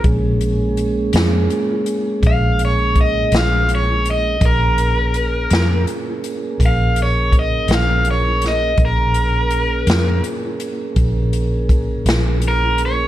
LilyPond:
<<
  \new Staff \with { instrumentName = "Overdriven electric guitar" } { \time 12/8 \key bes \minor \tempo 4. = 55 r2. f''8 des''8 ees''8 f''8 des''8 ees''8 | bes'2 r4 f''8 des''8 ees''8 f''8 des''8 ees''8 | bes'2 r2. bes'8 des''8 | }
  \new Staff \with { instrumentName = "Tonewheel organ" } { \time 12/8 \key bes \minor <aes bes des' aes'>1. | <bes des' aes' bes'>1. | <bes des' aes' bes'>1. | }
  \new Staff \with { instrumentName = "Fingered electric bass" } { \clef bass \time 12/8 \key bes \minor bes,,4. f,8 r4 bes,,4. bes,,4. | bes,,4. f,8 r4 bes,,4. bes,,4. | bes,,4. f,8 r4 bes,,4. bes,,4. | }
  \new DrumStaff \with { instrumentName = "Drums" } \drummode { \time 12/8 <hh bd>8 hh8 hh8 <hh sn>8 hh8 hh8 <hh bd>8 hh8 <hh bd>8 <hh sn>8 hh8 hh8 | <hh bd>8 hh8 hh8 <hh sn>8 hh8 hh8 <hh bd>8 hh8 <hh bd>8 <hh sn>8 hh8 <hh sn>8 | <hh bd>8 hh8 hh8 <hh sn>8 hh8 hh8 <hh bd>8 hh8 <hh bd>8 <hh sn>8 hh8 hh8 | }
>>